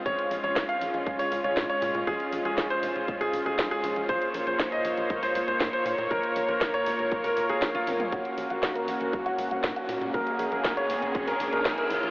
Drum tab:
HH |xxoxxxoxxooxxxox|xxoxxxoxxxoxxxox|xxoxxxoxxooxxxox|xxoxxxoxxooxxxox|
SD |----o-------o---|----o-------o---|----o-------o---|----o-------o---|
T1 |----------------|----------------|----------------|--------------o-|
T2 |----------------|----------------|----------------|---------------o|
BD |o---o---o---o---|o---o---o---o---|o---o---o---o---|o---o---o---oo--|

HH |xxoxxxoxxxoxxxox|xxoxxxoxxooxxxox|
SD |----o-------o---|----o-------o---|
T1 |----------------|----------------|
T2 |----------------|----------------|
BD |o---o---o---o---|o---o---o---o---|